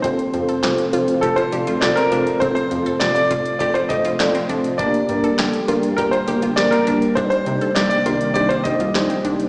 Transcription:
<<
  \new Staff \with { instrumentName = "Grand piano" } { \time 4/4 \key f \mixolydian \tempo 4 = 101 c''2 a'16 c''8. d''16 bes'8. | c''16 c''8. d''16 d''8. d''16 c''16 ees''4 r8 | d''2 bes'16 c''8. d''16 bes'8. | c''16 c''8. d''16 d''8. d''16 c''16 ees''4 r8 | }
  \new Staff \with { instrumentName = "FM electric piano" } { \time 4/4 \key f \mixolydian <c' f' a' c''>8 <c' f' a' c''>8 <c' f' a' c''>8 <c' f' a' c''>8 <c' f' a' c''>8 <c' f' a' d''>8 <c' f' a' c''>8 <c' f' a' c''>8 | <c' f' a' c''>8 <c' f' a' c''>8 <c' f' a' d''>8 <c' f' a' d''>8 <c' f' a' c''>8 <c' f' a' c''>8 <c' f' a' d''>8 <c' f' a' c''>8 | <bes d' g' bes'>8 <bes d' g' bes'>8 <bes d' g' a'>8 <bes d' g' bes'>8 <bes d' g' bes'>8 <bes d' g' bes'>8 <bes d' g' bes'>8 <bes d' g' bes'>8 | <d' ees' g' c''>8 <d' ees' g' c''>8 <d' ees' g' c''>8 <d' ees' g' bes'>8 <d' ees' g' c''>8 <d' ees' g' c''>8 <d' ees' g' c''>8 <d' ees' g' c''>8 | }
  \new Staff \with { instrumentName = "Synth arpeggio sound" } { \time 4/4 \key f \mixolydian c'8 r16 a'16 g'8 f'8 g'16 f'16 g'16 f'16 g'16 c'16 d'8 | c'8 r16 a'16 g'8 f'8 g'16 f'16 g'16 f'16 g'16 c'16 d'8 | d'8 r16 a'16 g'8 f'8 g'16 f'16 g'16 f'16 g'16 c'16 d'8 | d'8 r16 a'16 g'8 f'8 g'16 f'16 g'16 f'16 g'16 c'16 d'8 | }
  \new Staff \with { instrumentName = "String machine" } { \clef bass \time 4/4 \key f \mixolydian << { <a, c f'>1~ | <a, c f'>1 | <bes, d g'>1 | <c ees g'>1 | } \\ { <f c'>1~ | <f c'>1 | <g bes>1~ | <g bes>1 | } >> }
  \new Staff \with { instrumentName = "Analog synth bass" } { \clef bass \time 4/4 \key f \mixolydian f,,16 r16 f,16 r16 f,,16 r16 f,,16 r16 f,,16 r16 f,,16 f,,16 f,,16 r16 f,,16 r16 | f,,16 r16 f,16 r16 f,,16 r16 f,,16 r16 f,,16 r16 f,,16 f,,16 f,,16 r16 f,,16 r16 | g,,16 r16 g,16 r16 g,,16 r16 g,,16 r16 g,,16 r16 g,,16 g,,16 g,,16 r16 g,,16 r16 | c,16 r16 c16 r16 c,16 r16 c,16 r16 c,16 r16 c,16 c,16 c,16 r16 c,16 r16 | }
  \new DrumStaff \with { instrumentName = "Drums" } \drummode { \time 4/4 <hh bd>16 hh16 hh16 hh16 <hc hh sn>16 hh16 hh16 hh16 <hh bd>16 hh16 hh16 hh16 <hc hh sn>16 hh16 hh16 hh16 | <hh bd>16 hh16 hh16 hh16 <hc hh sn>16 hh16 <hh bd>16 hh16 <hh bd>16 hh16 <hh bd>16 hh16 <hc hh sn>16 hh16 hh16 hh16 | <hh bd>16 hh16 hh16 hh16 <hc hh sn>16 hh16 hh16 hh16 <hh bd>16 hh16 hh16 hh16 <hc hh sn>16 hh16 hh16 hh16 | <hh bd>16 hh16 hh16 hh16 <hc hh sn>16 hh16 hh16 hh16 hh16 hh16 <hh bd>16 hh16 <hc hh sn>16 hh16 hh16 hh16 | }
>>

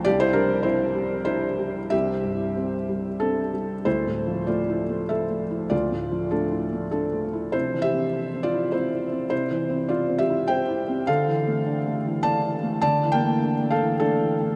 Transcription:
<<
  \new Staff \with { instrumentName = "Felt piano" } { \time 3/4 \key d \minor \tempo 4 = 100 <g' d''>16 <e' c''>16 <d' bes'>8 <e' c''>4 <e' c''>4 | <g' e''>2 <c' a'>4 | <e' c''>4 <f' d''>4 <a' e''>4 | <f' d''>4 <d' a'>4 <d' a'>4 |
<e' c''>8 <g' e''>4 <f' d''>8 <e' c''>4 | <e' c''>4 <f' d''>8 <g' e''>8 <c'' g''>4 | <a' f''>2 <d'' a''>4 | <d'' a''>8 <bes g''>4 <a' f''>8 <d' a'>4 | }
  \new Staff \with { instrumentName = "Felt piano" } { \time 3/4 \key d \minor c,8 g8 c'8 g8 d'8 g8 | c,8 g,8 c'8 g8 d'8 g8 | \tuplet 3/2 { d,8 a,8 f8 a8 e'8 a8 f8 a8 e'8 } | \tuplet 3/2 { d,8 a,8 f8 a8 e'8 a8 f8 a8 e'8 } |
\tuplet 3/2 { c8 e8 c'8 e'8 c'8 e'8 c'8 e'8 c'8 } | \tuplet 3/2 { c8 e8 c'8 e'8 c'8 e'8 c'8 e'8 c'8 } | \tuplet 3/2 { d8 e8 a8 d'8 a8 e8 a8 e8 a8 } | \tuplet 3/2 { d8 e8 a8 d'8 a8 e8 a8 e8 a8 } | }
>>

